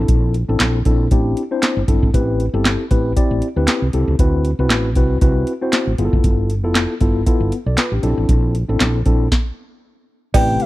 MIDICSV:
0, 0, Header, 1, 6, 480
1, 0, Start_track
1, 0, Tempo, 512821
1, 80, Time_signature, 4, 2, 24, 8
1, 9977, End_track
2, 0, Start_track
2, 0, Title_t, "Soft synth lead"
2, 0, Program_c, 0, 80
2, 9687, Note_on_c, 0, 79, 114
2, 9932, Note_on_c, 0, 76, 101
2, 9946, Note_off_c, 0, 79, 0
2, 9977, Note_off_c, 0, 76, 0
2, 9977, End_track
3, 0, Start_track
3, 0, Title_t, "Tine electric piano"
3, 0, Program_c, 1, 4
3, 0, Note_on_c, 1, 60, 76
3, 0, Note_on_c, 1, 62, 74
3, 0, Note_on_c, 1, 64, 75
3, 0, Note_on_c, 1, 69, 90
3, 320, Note_off_c, 1, 60, 0
3, 322, Note_off_c, 1, 62, 0
3, 323, Note_off_c, 1, 64, 0
3, 325, Note_off_c, 1, 69, 0
3, 454, Note_on_c, 1, 60, 82
3, 456, Note_on_c, 1, 62, 71
3, 459, Note_on_c, 1, 64, 74
3, 461, Note_on_c, 1, 69, 90
3, 729, Note_off_c, 1, 60, 0
3, 730, Note_off_c, 1, 62, 0
3, 731, Note_off_c, 1, 64, 0
3, 732, Note_off_c, 1, 69, 0
3, 798, Note_on_c, 1, 60, 78
3, 802, Note_on_c, 1, 62, 80
3, 805, Note_on_c, 1, 64, 75
3, 807, Note_on_c, 1, 69, 91
3, 992, Note_off_c, 1, 60, 0
3, 994, Note_off_c, 1, 62, 0
3, 996, Note_off_c, 1, 64, 0
3, 996, Note_off_c, 1, 69, 0
3, 1040, Note_on_c, 1, 60, 88
3, 1043, Note_on_c, 1, 62, 79
3, 1047, Note_on_c, 1, 64, 76
3, 1049, Note_on_c, 1, 67, 92
3, 1324, Note_off_c, 1, 60, 0
3, 1326, Note_off_c, 1, 62, 0
3, 1328, Note_off_c, 1, 64, 0
3, 1328, Note_off_c, 1, 67, 0
3, 1413, Note_on_c, 1, 60, 78
3, 1415, Note_on_c, 1, 62, 80
3, 1419, Note_on_c, 1, 64, 76
3, 1421, Note_on_c, 1, 72, 90
3, 1689, Note_off_c, 1, 60, 0
3, 1690, Note_off_c, 1, 62, 0
3, 1692, Note_off_c, 1, 64, 0
3, 1693, Note_off_c, 1, 72, 0
3, 1757, Note_on_c, 1, 60, 76
3, 1759, Note_on_c, 1, 62, 65
3, 1762, Note_on_c, 1, 64, 70
3, 1764, Note_on_c, 1, 69, 83
3, 1951, Note_off_c, 1, 60, 0
3, 1953, Note_off_c, 1, 62, 0
3, 1954, Note_off_c, 1, 64, 0
3, 1955, Note_off_c, 1, 69, 0
3, 1999, Note_on_c, 1, 60, 80
3, 2001, Note_on_c, 1, 64, 73
3, 2004, Note_on_c, 1, 67, 73
3, 2008, Note_on_c, 1, 71, 90
3, 2284, Note_off_c, 1, 60, 0
3, 2285, Note_off_c, 1, 64, 0
3, 2286, Note_off_c, 1, 67, 0
3, 2288, Note_off_c, 1, 71, 0
3, 2374, Note_on_c, 1, 60, 80
3, 2375, Note_on_c, 1, 64, 70
3, 2378, Note_on_c, 1, 67, 72
3, 2381, Note_on_c, 1, 69, 92
3, 2649, Note_off_c, 1, 60, 0
3, 2650, Note_off_c, 1, 64, 0
3, 2651, Note_off_c, 1, 67, 0
3, 2653, Note_off_c, 1, 69, 0
3, 2718, Note_on_c, 1, 60, 77
3, 2722, Note_on_c, 1, 64, 76
3, 2722, Note_on_c, 1, 67, 77
3, 2726, Note_on_c, 1, 71, 93
3, 2912, Note_off_c, 1, 60, 0
3, 2914, Note_off_c, 1, 64, 0
3, 2914, Note_off_c, 1, 67, 0
3, 2916, Note_off_c, 1, 71, 0
3, 2959, Note_on_c, 1, 60, 90
3, 2963, Note_on_c, 1, 64, 79
3, 2966, Note_on_c, 1, 67, 80
3, 2967, Note_on_c, 1, 74, 93
3, 3244, Note_off_c, 1, 60, 0
3, 3245, Note_off_c, 1, 64, 0
3, 3247, Note_off_c, 1, 67, 0
3, 3248, Note_off_c, 1, 74, 0
3, 3336, Note_on_c, 1, 60, 85
3, 3338, Note_on_c, 1, 64, 79
3, 3341, Note_on_c, 1, 67, 74
3, 3343, Note_on_c, 1, 71, 94
3, 3610, Note_off_c, 1, 60, 0
3, 3611, Note_off_c, 1, 64, 0
3, 3612, Note_off_c, 1, 67, 0
3, 3613, Note_off_c, 1, 71, 0
3, 3682, Note_on_c, 1, 60, 79
3, 3687, Note_on_c, 1, 64, 69
3, 3688, Note_on_c, 1, 67, 71
3, 3690, Note_on_c, 1, 69, 88
3, 3874, Note_off_c, 1, 60, 0
3, 3876, Note_off_c, 1, 64, 0
3, 3877, Note_off_c, 1, 67, 0
3, 3878, Note_off_c, 1, 69, 0
3, 3924, Note_on_c, 1, 60, 81
3, 3926, Note_on_c, 1, 64, 76
3, 3929, Note_on_c, 1, 66, 72
3, 3930, Note_on_c, 1, 71, 90
3, 4206, Note_off_c, 1, 60, 0
3, 4207, Note_off_c, 1, 64, 0
3, 4209, Note_off_c, 1, 66, 0
3, 4209, Note_off_c, 1, 71, 0
3, 4298, Note_on_c, 1, 60, 78
3, 4300, Note_on_c, 1, 64, 77
3, 4302, Note_on_c, 1, 66, 74
3, 4304, Note_on_c, 1, 71, 91
3, 4571, Note_off_c, 1, 60, 0
3, 4572, Note_off_c, 1, 64, 0
3, 4573, Note_off_c, 1, 66, 0
3, 4574, Note_off_c, 1, 71, 0
3, 4642, Note_on_c, 1, 60, 86
3, 4645, Note_on_c, 1, 64, 75
3, 4649, Note_on_c, 1, 66, 78
3, 4651, Note_on_c, 1, 71, 94
3, 4834, Note_off_c, 1, 60, 0
3, 4836, Note_off_c, 1, 64, 0
3, 4837, Note_off_c, 1, 66, 0
3, 4839, Note_off_c, 1, 71, 0
3, 4880, Note_on_c, 1, 60, 84
3, 4883, Note_on_c, 1, 64, 82
3, 4884, Note_on_c, 1, 66, 74
3, 4887, Note_on_c, 1, 71, 97
3, 5164, Note_off_c, 1, 60, 0
3, 5165, Note_off_c, 1, 64, 0
3, 5166, Note_off_c, 1, 66, 0
3, 5168, Note_off_c, 1, 71, 0
3, 5255, Note_on_c, 1, 60, 85
3, 5259, Note_on_c, 1, 64, 79
3, 5262, Note_on_c, 1, 66, 81
3, 5263, Note_on_c, 1, 72, 88
3, 5530, Note_off_c, 1, 60, 0
3, 5531, Note_off_c, 1, 64, 0
3, 5533, Note_off_c, 1, 66, 0
3, 5534, Note_off_c, 1, 72, 0
3, 5600, Note_on_c, 1, 59, 86
3, 5604, Note_on_c, 1, 64, 70
3, 5606, Note_on_c, 1, 65, 77
3, 5608, Note_on_c, 1, 68, 72
3, 5665, Note_on_c, 1, 69, 89
3, 5669, Note_off_c, 1, 68, 0
3, 6081, Note_off_c, 1, 59, 0
3, 6082, Note_off_c, 1, 64, 0
3, 6084, Note_off_c, 1, 65, 0
3, 6113, Note_off_c, 1, 69, 0
3, 6212, Note_on_c, 1, 59, 78
3, 6216, Note_on_c, 1, 64, 74
3, 6216, Note_on_c, 1, 65, 73
3, 6220, Note_on_c, 1, 69, 91
3, 6488, Note_off_c, 1, 59, 0
3, 6490, Note_off_c, 1, 64, 0
3, 6490, Note_off_c, 1, 65, 0
3, 6492, Note_off_c, 1, 69, 0
3, 6557, Note_on_c, 1, 59, 82
3, 6560, Note_on_c, 1, 64, 75
3, 6562, Note_on_c, 1, 65, 78
3, 6564, Note_on_c, 1, 69, 92
3, 6751, Note_off_c, 1, 59, 0
3, 6753, Note_off_c, 1, 64, 0
3, 6754, Note_off_c, 1, 65, 0
3, 6755, Note_off_c, 1, 69, 0
3, 6798, Note_on_c, 1, 59, 89
3, 6799, Note_on_c, 1, 64, 84
3, 6804, Note_on_c, 1, 65, 81
3, 6805, Note_on_c, 1, 69, 90
3, 7040, Note_off_c, 1, 64, 0
3, 7042, Note_off_c, 1, 65, 0
3, 7043, Note_off_c, 1, 69, 0
3, 7083, Note_off_c, 1, 59, 0
3, 7175, Note_on_c, 1, 74, 64
3, 7182, Note_on_c, 1, 69, 52
3, 7275, Note_off_c, 1, 74, 0
3, 7279, Note_off_c, 1, 69, 0
3, 7282, Note_on_c, 1, 71, 72
3, 7288, Note_on_c, 1, 65, 60
3, 7409, Note_off_c, 1, 71, 0
3, 7412, Note_off_c, 1, 65, 0
3, 7413, Note_on_c, 1, 67, 69
3, 7418, Note_on_c, 1, 62, 55
3, 7505, Note_off_c, 1, 62, 0
3, 7513, Note_on_c, 1, 60, 83
3, 7516, Note_on_c, 1, 62, 80
3, 7518, Note_on_c, 1, 64, 76
3, 7521, Note_on_c, 1, 69, 87
3, 7642, Note_off_c, 1, 67, 0
3, 7997, Note_off_c, 1, 60, 0
3, 7998, Note_off_c, 1, 62, 0
3, 8000, Note_off_c, 1, 64, 0
3, 8001, Note_off_c, 1, 69, 0
3, 8130, Note_on_c, 1, 60, 78
3, 8132, Note_on_c, 1, 62, 68
3, 8136, Note_on_c, 1, 64, 70
3, 8138, Note_on_c, 1, 69, 86
3, 8407, Note_off_c, 1, 60, 0
3, 8408, Note_off_c, 1, 62, 0
3, 8410, Note_off_c, 1, 64, 0
3, 8411, Note_off_c, 1, 69, 0
3, 8476, Note_on_c, 1, 60, 83
3, 8480, Note_on_c, 1, 62, 76
3, 8481, Note_on_c, 1, 64, 73
3, 8485, Note_on_c, 1, 69, 88
3, 8671, Note_off_c, 1, 60, 0
3, 8673, Note_off_c, 1, 62, 0
3, 8673, Note_off_c, 1, 64, 0
3, 8675, Note_off_c, 1, 69, 0
3, 9677, Note_on_c, 1, 60, 77
3, 9678, Note_on_c, 1, 64, 67
3, 9682, Note_on_c, 1, 67, 67
3, 9684, Note_on_c, 1, 71, 81
3, 9962, Note_off_c, 1, 60, 0
3, 9963, Note_off_c, 1, 64, 0
3, 9965, Note_off_c, 1, 67, 0
3, 9966, Note_off_c, 1, 71, 0
3, 9977, End_track
4, 0, Start_track
4, 0, Title_t, "Analog synth pad"
4, 0, Program_c, 2, 89
4, 9679, Note_on_c, 2, 67, 89
4, 9680, Note_on_c, 2, 48, 78
4, 9681, Note_on_c, 2, 57, 73
4, 9977, Note_off_c, 2, 48, 0
4, 9977, Note_off_c, 2, 57, 0
4, 9977, Note_off_c, 2, 67, 0
4, 9977, End_track
5, 0, Start_track
5, 0, Title_t, "Fretless electric bass"
5, 0, Program_c, 3, 35
5, 80, Note_on_c, 3, 34, 91
5, 392, Note_off_c, 3, 34, 0
5, 457, Note_on_c, 3, 33, 85
5, 544, Note_off_c, 3, 33, 0
5, 559, Note_on_c, 3, 34, 93
5, 759, Note_off_c, 3, 34, 0
5, 802, Note_on_c, 3, 34, 83
5, 1001, Note_off_c, 3, 34, 0
5, 1040, Note_on_c, 3, 33, 95
5, 1240, Note_off_c, 3, 33, 0
5, 1654, Note_on_c, 3, 31, 85
5, 1742, Note_off_c, 3, 31, 0
5, 1758, Note_on_c, 3, 31, 82
5, 1871, Note_off_c, 3, 31, 0
5, 1898, Note_on_c, 3, 32, 86
5, 1984, Note_off_c, 3, 32, 0
5, 2002, Note_on_c, 3, 33, 93
5, 2313, Note_off_c, 3, 33, 0
5, 2374, Note_on_c, 3, 31, 94
5, 2574, Note_off_c, 3, 31, 0
5, 2723, Note_on_c, 3, 33, 81
5, 2921, Note_off_c, 3, 33, 0
5, 3097, Note_on_c, 3, 33, 85
5, 3184, Note_off_c, 3, 33, 0
5, 3336, Note_on_c, 3, 38, 79
5, 3423, Note_off_c, 3, 38, 0
5, 3576, Note_on_c, 3, 36, 82
5, 3664, Note_off_c, 3, 36, 0
5, 3683, Note_on_c, 3, 36, 79
5, 3794, Note_off_c, 3, 36, 0
5, 3815, Note_on_c, 3, 37, 95
5, 3903, Note_off_c, 3, 37, 0
5, 3921, Note_on_c, 3, 38, 84
5, 4232, Note_off_c, 3, 38, 0
5, 4294, Note_on_c, 3, 36, 88
5, 4399, Note_off_c, 3, 36, 0
5, 4399, Note_on_c, 3, 33, 95
5, 4642, Note_off_c, 3, 33, 0
5, 4642, Note_on_c, 3, 36, 82
5, 4841, Note_off_c, 3, 36, 0
5, 4882, Note_on_c, 3, 36, 100
5, 5081, Note_off_c, 3, 36, 0
5, 5495, Note_on_c, 3, 33, 81
5, 5583, Note_off_c, 3, 33, 0
5, 5600, Note_on_c, 3, 31, 99
5, 5712, Note_off_c, 3, 31, 0
5, 5736, Note_on_c, 3, 30, 94
5, 5824, Note_off_c, 3, 30, 0
5, 5841, Note_on_c, 3, 31, 92
5, 6213, Note_off_c, 3, 31, 0
5, 6213, Note_on_c, 3, 29, 90
5, 6413, Note_off_c, 3, 29, 0
5, 6560, Note_on_c, 3, 31, 85
5, 6760, Note_off_c, 3, 31, 0
5, 6930, Note_on_c, 3, 31, 79
5, 7020, Note_off_c, 3, 31, 0
5, 7173, Note_on_c, 3, 35, 80
5, 7262, Note_off_c, 3, 35, 0
5, 7410, Note_on_c, 3, 33, 87
5, 7500, Note_off_c, 3, 33, 0
5, 7517, Note_on_c, 3, 34, 87
5, 7631, Note_off_c, 3, 34, 0
5, 7653, Note_on_c, 3, 33, 80
5, 7742, Note_off_c, 3, 33, 0
5, 7757, Note_on_c, 3, 34, 102
5, 8070, Note_off_c, 3, 34, 0
5, 8133, Note_on_c, 3, 33, 88
5, 8222, Note_off_c, 3, 33, 0
5, 8239, Note_on_c, 3, 34, 93
5, 8439, Note_off_c, 3, 34, 0
5, 8480, Note_on_c, 3, 34, 81
5, 8680, Note_off_c, 3, 34, 0
5, 9680, Note_on_c, 3, 33, 99
5, 9880, Note_off_c, 3, 33, 0
5, 9977, End_track
6, 0, Start_track
6, 0, Title_t, "Drums"
6, 78, Note_on_c, 9, 42, 81
6, 80, Note_on_c, 9, 36, 112
6, 172, Note_off_c, 9, 42, 0
6, 173, Note_off_c, 9, 36, 0
6, 322, Note_on_c, 9, 42, 65
6, 415, Note_off_c, 9, 42, 0
6, 561, Note_on_c, 9, 38, 103
6, 561, Note_on_c, 9, 42, 82
6, 562, Note_on_c, 9, 39, 88
6, 655, Note_off_c, 9, 38, 0
6, 655, Note_off_c, 9, 39, 0
6, 655, Note_off_c, 9, 42, 0
6, 798, Note_on_c, 9, 42, 72
6, 802, Note_on_c, 9, 36, 92
6, 892, Note_off_c, 9, 42, 0
6, 895, Note_off_c, 9, 36, 0
6, 1039, Note_on_c, 9, 42, 82
6, 1041, Note_on_c, 9, 36, 115
6, 1133, Note_off_c, 9, 42, 0
6, 1134, Note_off_c, 9, 36, 0
6, 1282, Note_on_c, 9, 42, 75
6, 1375, Note_off_c, 9, 42, 0
6, 1520, Note_on_c, 9, 42, 84
6, 1525, Note_on_c, 9, 38, 109
6, 1525, Note_on_c, 9, 39, 87
6, 1613, Note_off_c, 9, 42, 0
6, 1618, Note_off_c, 9, 38, 0
6, 1619, Note_off_c, 9, 39, 0
6, 1759, Note_on_c, 9, 36, 100
6, 1761, Note_on_c, 9, 42, 76
6, 1853, Note_off_c, 9, 36, 0
6, 1855, Note_off_c, 9, 42, 0
6, 1898, Note_on_c, 9, 36, 95
6, 1991, Note_off_c, 9, 36, 0
6, 2002, Note_on_c, 9, 36, 105
6, 2005, Note_on_c, 9, 42, 76
6, 2096, Note_off_c, 9, 36, 0
6, 2099, Note_off_c, 9, 42, 0
6, 2245, Note_on_c, 9, 42, 64
6, 2339, Note_off_c, 9, 42, 0
6, 2484, Note_on_c, 9, 38, 105
6, 2484, Note_on_c, 9, 42, 86
6, 2485, Note_on_c, 9, 39, 82
6, 2578, Note_off_c, 9, 38, 0
6, 2578, Note_off_c, 9, 39, 0
6, 2578, Note_off_c, 9, 42, 0
6, 2721, Note_on_c, 9, 42, 67
6, 2723, Note_on_c, 9, 36, 96
6, 2815, Note_off_c, 9, 42, 0
6, 2816, Note_off_c, 9, 36, 0
6, 2962, Note_on_c, 9, 36, 106
6, 2963, Note_on_c, 9, 42, 92
6, 3056, Note_off_c, 9, 36, 0
6, 3057, Note_off_c, 9, 42, 0
6, 3200, Note_on_c, 9, 42, 72
6, 3294, Note_off_c, 9, 42, 0
6, 3438, Note_on_c, 9, 42, 82
6, 3444, Note_on_c, 9, 38, 110
6, 3444, Note_on_c, 9, 39, 84
6, 3532, Note_off_c, 9, 42, 0
6, 3537, Note_off_c, 9, 38, 0
6, 3538, Note_off_c, 9, 39, 0
6, 3681, Note_on_c, 9, 42, 76
6, 3774, Note_off_c, 9, 42, 0
6, 3921, Note_on_c, 9, 36, 105
6, 3922, Note_on_c, 9, 42, 82
6, 4015, Note_off_c, 9, 36, 0
6, 4016, Note_off_c, 9, 42, 0
6, 4162, Note_on_c, 9, 42, 68
6, 4255, Note_off_c, 9, 42, 0
6, 4402, Note_on_c, 9, 38, 107
6, 4402, Note_on_c, 9, 42, 86
6, 4403, Note_on_c, 9, 39, 87
6, 4496, Note_off_c, 9, 38, 0
6, 4496, Note_off_c, 9, 39, 0
6, 4496, Note_off_c, 9, 42, 0
6, 4638, Note_on_c, 9, 42, 70
6, 4642, Note_on_c, 9, 36, 98
6, 4731, Note_off_c, 9, 42, 0
6, 4736, Note_off_c, 9, 36, 0
6, 4880, Note_on_c, 9, 42, 88
6, 4881, Note_on_c, 9, 36, 114
6, 4974, Note_off_c, 9, 42, 0
6, 4975, Note_off_c, 9, 36, 0
6, 5120, Note_on_c, 9, 42, 70
6, 5214, Note_off_c, 9, 42, 0
6, 5358, Note_on_c, 9, 42, 80
6, 5363, Note_on_c, 9, 38, 111
6, 5364, Note_on_c, 9, 39, 89
6, 5452, Note_off_c, 9, 42, 0
6, 5457, Note_off_c, 9, 38, 0
6, 5457, Note_off_c, 9, 39, 0
6, 5601, Note_on_c, 9, 42, 77
6, 5695, Note_off_c, 9, 42, 0
6, 5737, Note_on_c, 9, 36, 97
6, 5830, Note_off_c, 9, 36, 0
6, 5840, Note_on_c, 9, 36, 107
6, 5840, Note_on_c, 9, 42, 80
6, 5934, Note_off_c, 9, 36, 0
6, 5934, Note_off_c, 9, 42, 0
6, 6081, Note_on_c, 9, 42, 67
6, 6175, Note_off_c, 9, 42, 0
6, 6321, Note_on_c, 9, 38, 105
6, 6321, Note_on_c, 9, 39, 85
6, 6321, Note_on_c, 9, 42, 92
6, 6415, Note_off_c, 9, 38, 0
6, 6415, Note_off_c, 9, 39, 0
6, 6415, Note_off_c, 9, 42, 0
6, 6557, Note_on_c, 9, 42, 71
6, 6561, Note_on_c, 9, 36, 95
6, 6651, Note_off_c, 9, 42, 0
6, 6654, Note_off_c, 9, 36, 0
6, 6800, Note_on_c, 9, 36, 111
6, 6800, Note_on_c, 9, 42, 90
6, 6893, Note_off_c, 9, 36, 0
6, 6893, Note_off_c, 9, 42, 0
6, 7040, Note_on_c, 9, 42, 77
6, 7133, Note_off_c, 9, 42, 0
6, 7275, Note_on_c, 9, 42, 77
6, 7280, Note_on_c, 9, 38, 107
6, 7281, Note_on_c, 9, 39, 91
6, 7369, Note_off_c, 9, 42, 0
6, 7374, Note_off_c, 9, 38, 0
6, 7374, Note_off_c, 9, 39, 0
6, 7517, Note_on_c, 9, 42, 73
6, 7610, Note_off_c, 9, 42, 0
6, 7758, Note_on_c, 9, 36, 104
6, 7758, Note_on_c, 9, 42, 78
6, 7851, Note_off_c, 9, 42, 0
6, 7852, Note_off_c, 9, 36, 0
6, 8001, Note_on_c, 9, 42, 69
6, 8094, Note_off_c, 9, 42, 0
6, 8240, Note_on_c, 9, 38, 99
6, 8241, Note_on_c, 9, 39, 87
6, 8241, Note_on_c, 9, 42, 87
6, 8334, Note_off_c, 9, 38, 0
6, 8334, Note_off_c, 9, 39, 0
6, 8334, Note_off_c, 9, 42, 0
6, 8476, Note_on_c, 9, 42, 71
6, 8480, Note_on_c, 9, 36, 99
6, 8570, Note_off_c, 9, 42, 0
6, 8574, Note_off_c, 9, 36, 0
6, 8720, Note_on_c, 9, 36, 104
6, 8722, Note_on_c, 9, 38, 90
6, 8813, Note_off_c, 9, 36, 0
6, 8815, Note_off_c, 9, 38, 0
6, 9680, Note_on_c, 9, 36, 110
6, 9680, Note_on_c, 9, 56, 78
6, 9682, Note_on_c, 9, 42, 84
6, 9682, Note_on_c, 9, 49, 96
6, 9773, Note_off_c, 9, 36, 0
6, 9773, Note_off_c, 9, 56, 0
6, 9775, Note_off_c, 9, 49, 0
6, 9776, Note_off_c, 9, 42, 0
6, 9920, Note_on_c, 9, 42, 71
6, 9977, Note_off_c, 9, 42, 0
6, 9977, End_track
0, 0, End_of_file